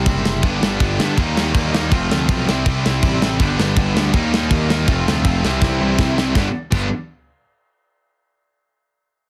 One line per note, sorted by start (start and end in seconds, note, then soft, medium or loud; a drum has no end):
0.00 0.43 C3 loud
0.00 0.43 G3 loud
0.00 0.44 C4 medium
0.06 0.41 F#1 medium
0.06 0.43 C3 medium
0.06 0.43 G3 medium
0.06 0.43 C4 medium
0.06 0.44 E4 medium
0.06 kick loud
0.06 crash medium
0.25 snare loud
0.43 0.61 G1 medium
0.43 0.60 G2 medium
0.43 0.61 D3 loud
0.43 0.61 G3 loud
0.43 0.62 B3 loud
0.43 0.62 D4 loud
0.43 kick loud
0.43 crash medium
0.61 0.79 G1 medium
0.61 0.79 G2 loud
0.61 0.80 D3 loud
0.61 0.80 G3 loud
0.61 0.81 B3 loud
0.61 0.81 D4 loud
0.61 snare loud
0.80 0.98 G1 medium
0.80 0.97 G2 medium
0.80 0.98 D3 medium
0.80 0.99 G3 loud
0.80 0.99 B3 loud
0.80 0.99 D4 loud
0.80 kick loud
0.80 crash medium
0.98 1.16 G2 medium
0.98 1.17 G2 medium
0.98 1.17 D3 medium
0.98 1.17 G3 medium
0.98 1.17 B3 medium
0.98 1.18 D4 medium
0.98 snare loud
1.17 1.52 D#2 medium
1.17 1.34 D#3 medium
1.17 1.35 G3 medium
1.17 1.35 A#3 loud
1.17 1.36 D#4 loud
1.17 kick loud
1.17 crash medium
1.35 1.52 D#3 medium
1.35 1.52 G3 loud
1.35 1.53 A#3 loud
1.35 1.53 D#4 loud
1.35 snare loud
1.53 1.89 D#2 medium
1.53 1.70 D#3 medium
1.53 1.71 G3 medium
1.53 1.71 A#3 loud
1.53 1.72 D#4 loud
1.53 kick loud
1.53 crash medium
1.71 1.90 D#3 loud
1.71 1.90 G3 loud
1.71 1.91 A#3 loud
1.71 1.91 D#4 loud
1.71 snare loud
1.91 2.09 F1 medium
1.91 2.46 F2 loud
1.91 2.46 C3 loud
1.91 2.09 F3 medium
1.91 2.09 A3 loud
1.91 2.10 C4 loud
1.91 2.10 F4 loud
1.91 kick loud
1.91 crash medium
2.10 2.28 D2 medium
2.10 2.27 F3 medium
2.10 2.28 A3 medium
2.10 2.29 C4 loud
2.10 2.29 F4 medium
2.10 snare loud
2.29 2.46 B1 loud
2.29 2.46 F3 medium
2.29 2.47 A3 medium
2.29 2.47 C4 loud
2.29 2.47 F4 loud
2.29 kick loud
2.29 crash medium
2.47 2.65 C2 loud
2.47 2.64 C3 loud
2.47 2.65 G3 medium
2.47 2.65 C4 loud
2.47 2.66 E4 loud
2.47 snare loud
2.65 2.83 C2 medium
2.65 2.83 C3 medium
2.65 2.83 G3 medium
2.65 2.84 C4 medium
2.65 2.84 E4 loud
2.65 kick loud
2.65 crash medium
2.84 3.02 C2 medium
2.84 3.01 C3 medium
2.84 3.02 G3 medium
2.84 3.02 C4 loud
2.84 3.03 E4 loud
2.84 snare loud
3.02 3.37 A1 loud
3.02 3.19 C3 loud
3.02 3.20 G3 loud
3.02 3.21 C4 medium
3.02 3.21 E4 loud
3.02 kick loud
3.02 crash medium
3.21 3.39 C3 medium
3.21 3.39 G3 loud
3.21 3.39 C4 loud
3.21 3.40 E4 loud
3.21 snare loud
3.39 3.57 G1 medium
3.39 3.55 G2 loud
3.39 3.56 D3 loud
3.39 3.57 G3 loud
3.39 3.57 B3 loud
3.39 3.58 D4 loud
3.39 kick loud
3.39 crash medium
3.56 3.76 G1 medium
3.56 3.75 G2 medium
3.56 3.75 D3 medium
3.56 3.75 G3 medium
3.56 3.76 B3 medium
3.56 3.77 D4 loud
3.56 snare loud
3.76 3.94 G1 loud
3.76 3.93 G2 medium
3.76 3.94 D3 loud
3.76 3.94 G3 loud
3.76 3.95 B3 loud
3.76 3.96 D4 loud
3.76 kick loud
3.76 crash medium
3.94 4.12 D2 loud
3.94 4.12 G2 medium
3.94 4.13 D3 loud
3.94 4.13 G3 medium
3.94 4.13 B3 loud
3.94 4.14 D4 loud
3.94 snare loud
4.14 4.48 D#2 medium
4.14 4.30 D#3 loud
4.14 4.31 G3 medium
4.14 4.31 A#3 loud
4.14 4.31 D#4 loud
4.14 kick loud
4.14 crash medium
4.31 4.49 D#3 loud
4.31 4.50 G3 loud
4.31 4.50 A#3 loud
4.31 4.51 D#4 loud
4.31 snare loud
4.50 4.85 D#2 medium
4.50 4.67 D#3 medium
4.50 4.68 G3 loud
4.50 4.69 A#3 medium
4.50 4.69 D#4 loud
4.50 kick loud
4.50 crash medium
4.69 4.86 D#3 loud
4.69 4.87 G3 medium
4.69 4.87 A#3 medium
4.69 4.87 D#4 loud
4.69 snare loud
4.87 5.05 F1 medium
4.87 5.42 F2 medium
4.87 5.42 C3 loud
4.87 5.05 F3 loud
4.87 5.05 A3 medium
4.87 5.06 C4 loud
4.87 5.06 F4 loud
4.87 kick loud
4.87 crash medium
5.06 5.24 D2 medium
5.06 5.23 F3 medium
5.06 5.24 A3 loud
5.06 5.24 C4 medium
5.06 5.25 F4 medium
5.06 snare loud
5.24 5.41 F1 medium
5.24 5.42 F3 loud
5.24 5.42 A3 loud
5.24 5.43 C4 loud
5.24 5.43 F4 loud
5.24 kick loud
5.24 crash medium
5.43 5.61 C2 loud
5.43 5.60 C3 loud
5.43 5.60 E3 loud
5.43 5.61 G3 loud
5.43 5.61 C4 loud
5.43 5.62 E4 loud
5.43 snare loud
5.61 5.79 C2 medium
5.61 5.79 C3 medium
5.61 5.79 E3 loud
5.61 5.79 G3 medium
5.61 5.80 C4 medium
5.61 5.81 E4 medium
5.61 kick loud
5.61 snare medium
5.80 5.98 C2 medium
5.80 5.98 C3 medium
5.80 5.98 E3 loud
5.80 5.99 G3 loud
5.80 6.00 C4 medium
5.80 6.00 E4 loud
5.99 6.32 C2 medium
5.99 6.15 C3 medium
5.99 6.16 E3 loud
5.99 6.16 G3 medium
5.99 6.16 C4 loud
5.99 6.17 E4 medium
5.99 kick loud
5.99 snare loud
6.16 6.34 C3 medium
6.16 6.34 E3 medium
6.16 6.34 G3 medium
6.16 6.35 C4 loud
6.16 6.35 E4 loud
6.16 snare medium
6.35 6.46 G1 loud
6.35 6.46 G2 loud
6.35 6.46 D3 loud
6.35 6.47 G3 loud
6.35 6.47 B3 loud
6.35 6.47 D4 loud
6.35 6.47 G4 loud
6.35 kick loud
6.35 snare loud
6.71 6.89 G1 medium
6.71 6.86 G2 medium
6.71 6.87 D3 medium
6.71 6.87 G3 medium
6.71 6.87 B3 loud
6.71 6.87 D4 loud
6.71 6.87 G4 loud
6.71 kick loud
6.71 crash loud